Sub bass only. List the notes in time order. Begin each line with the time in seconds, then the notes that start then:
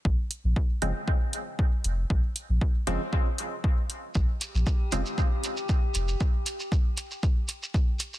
0.05 A#1
0.44 A#1
0.82 F1
1.84 F1
2.10 A#1
2.49 A#1
2.87 F1
4.15 A#1
4.54 A#1
4.92 F1
5.95 F1